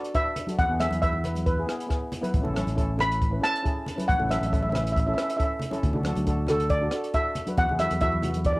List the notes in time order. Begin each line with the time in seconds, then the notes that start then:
Already playing: D5
0.05 closed hi-hat
0.14 D4 F#4 B4 E5, kick, closed hi-hat
0.36 closed hi-hat, low conga
0.47 D4 F#4 A4, closed hi-hat, high conga
0.58 E2 F#5, kick, closed hi-hat
0.68 E2 B3 E4 G#4
0.78 B3 E4 G#4 E5, cross-stick, closed hi-hat, high conga
0.91 E2, closed hi-hat, high conga
1.01 B3 E4 B4 E5, kick, closed hi-hat
1.13 high conga
1.24 B3 E4 B4, closed hi-hat, low conga
1.35 closed hi-hat, high conga
1.46 B4, kick, closed hi-hat
1.57 B3 E4 G#4
1.66 B3 E4 G#4, cross-stick, closed hi-hat
1.80 closed hi-hat
1.87 B3 E4 G#4, kick, cross-stick, closed hi-hat
2.12 closed hi-hat, low conga
2.21 B3 E4 B4, closed hi-hat, high conga
2.34 A1, kick, closed hi-hat
2.41 A1 C#4 E4 A4, low conga
2.54 C#4 E4 A4, cross-stick, closed hi-hat, high conga
2.67 A1, closed hi-hat, high conga
2.75 C#4 E4 A4, kick, closed hi-hat
2.97 C#4 E4 A4 B5, cross-stick, closed hi-hat, low conga
3.12 closed hi-hat
3.22 kick, closed hi-hat
3.31 C#4 E4 B4
3.40 C#4 E4 A4 A5, cross-stick, closed hi-hat
3.56 closed hi-hat
3.63 C#4 E4 G#4, kick, closed hi-hat
3.86 closed hi-hat, low conga
3.96 C#4 E4 B4, closed hi-hat, high conga
4.08 A1 F#5, kick, closed hi-hat
4.18 A1 C#4 E4 A4, low conga
4.28 C#4 E4 A4 E5, cross-stick, closed hi-hat, high conga
4.39 A1 E5, closed hi-hat, high conga
4.46 E5
4.51 C#4 E4 A4 E5, kick, closed hi-hat
4.63 E5, high conga
4.70 C#4 E4 B4 E5, low conga
4.75 E5, cross-stick, closed hi-hat
4.84 E5, closed hi-hat
4.92 E5
4.96 E5, kick, closed hi-hat
5.06 C#4 E4 A4 E5
5.14 C#4 E4 B4 E5
5.18 E5, cross-stick, closed hi-hat
5.30 E5, closed hi-hat
5.36 C#4 E4 A4 E5, kick, closed hi-hat
5.44 E5
5.60 closed hi-hat, low conga
5.71 C#4 E4 A4, closed hi-hat, high conga
5.83 D2, kick, closed hi-hat
5.93 D2 D4 F#4 A4, low conga
6.03 D4 F#4 A4, cross-stick, closed hi-hat, high conga
6.16 D2, closed hi-hat, high conga
6.26 D4 F#4 A4, kick, closed hi-hat
6.47 D4 F#4 A4, cross-stick, closed hi-hat, low conga
6.60 closed hi-hat
6.70 D5, kick, closed hi-hat
6.82 D4 F#4 A4
6.91 D4 F#4 A4, cross-stick, closed hi-hat
7.04 closed hi-hat
7.14 D4 F#4 A4 E5, kick, closed hi-hat
7.35 closed hi-hat, low conga
7.47 D4 F#4 B4, closed hi-hat, high conga
7.57 E2 F#5, kick, closed hi-hat
7.69 E2 B3 E4 G#4, low conga
7.78 B3 E4 F#4 E5, cross-stick, closed hi-hat, high conga
7.91 E2, closed hi-hat, high conga
8.00 B3 E4 F#4 E5, kick, closed hi-hat
8.12 high conga
8.22 B3 E4 F#4, closed hi-hat, low conga
8.34 closed hi-hat, high conga
8.44 D5, kick, closed hi-hat
8.53 B3 E4 G#4 D5